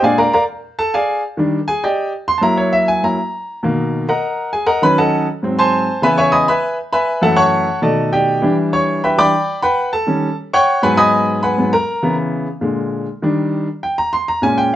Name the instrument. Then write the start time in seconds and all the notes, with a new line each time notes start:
grand piano
0.02 A#2 G#3 D4 G#4 D5 F5 G#5
0.18 A#4 D5 F5 A#5
0.33 A#4 D5 F5 A#5
0.79 A4 A5
0.94 G#4 D5 F5 G#5
1.37 D#3 G3 D4
1.68 G#4 G#5
1.84 G4 D5 D#5 G5
2.28 C6
2.38 F#3 A5
2.42 A#3 E4 A#5
2.57 C#5
2.73 E5
2.88 G#5
3.03 F#3 A#3 E4 A#5
3.63 B2 D#3 A#3
4.09 A#4 D#5 F#5 A#5
4.53 G#4 G#5
4.66 A#4 D#5 F#5 A#5
4.82 D#3 F#3 C#4 B4 B5
4.98 A4 D#5 F#5 A5
5.42 G#2 F#3 C4
5.59 C5 G#5 A5 C6
6.02 C#3 E3 B3 B4 E5 G#5 B5
6.18 C#5 E5 G#5 C#6
6.32 D#5 G#5 B5 D#6
6.48 B4 E5 G#5 B5
6.93 B4 E5 G#5 B5
7.22 F#2 E3 A3 A4 E5 F#5 A5
7.36 C#5 F#5 A5 C#6
7.82 B2 D#3 A3 A4 D5 D#5 A5
8.13 G4 D5 D#5 G5
8.42 E3 G3 D4
8.73 C#5 C#6
9.04 B4 E5 G5 B5
9.18 E3 G3 D4 D5 G5 B5 D6
9.62 B4 F#5 G5 B5
9.93 A4 A5
10.07 D#3 G3 C#4
10.53 C#5 F#5 G5 C#6
10.82 G#2 F#3 B3 B4 F#5 G#5 B5
10.97 D#5 G#5 B5 D#6
11.43 B4 F#5 G#5 B5
11.57 G#2 F#3 B3
11.73 A#4 A#5
12.03 C#3 E3 B3
12.61 A#2 D3 G#3
13.22 D#3 G3 D4
13.83 G5
13.98 A#5
14.13 C6
14.28 A#5
14.42 A#2 G#3 C#4 G#5
14.58 G5